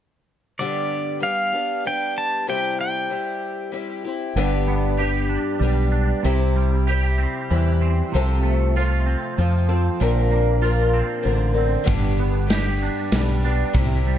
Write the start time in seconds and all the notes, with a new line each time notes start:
0.59 G2 D3 G3 B3 D4 G4 D5
1.20 G3 B3 D4 G4 F5
1.53 G3 B3 D4 G4
1.84 G3 B3 D4 G4 G5
2.18 A5
2.47 C3 G3 C4 E4 G4 G5
2.81 G5
3.10 G3 C4 E4 G4
3.72 G3 C4 E4 G4
4.04 C4 E4 G4
4.36 G1 G2 D3 G3 B3 D4 G4
4.68 B3
4.97 G3 B3 D4 G4
5.29 D4
5.59 B1 G3 B3 D4
5.64 G4
5.92 D4
6.23 C2 C3 G3 C4 E4 G4
6.56 G3
6.87 G3 C4 E4 G4
7.18 C4
7.50 E2 E3 G3 C4 E4 G4
7.81 C4
8.12 C2 C3 F3 C4 F4 A4
8.43 A3
8.76 F3 C4 F4 A4
9.06 C4
9.38 F2 F3 C4 F4 A4
9.69 C4 F4 A4
10.00 A#1 A#2 D3 F3 C4 D4 A#4
10.31 A#3
10.61 F3 C4 D4 F4 A#4
10.93 C4
11.23 A1 D3 F3 C4 D4 A#4
11.53 F3 C4 D4 A#4
11.58 C4
11.84 G2 D3 G3 B3 D4 G4, kick, ride
11.88 G1 G2
12.19 B3
12.47 G3 B3 D4 G4, snare, ride
12.82 D4
13.11 B1 G3 B3 D4 G4, snare, ride
13.43 G3 B3 D4 G4
13.73 C2 C3 G3 C4 E4 G4, kick, ride
14.07 G3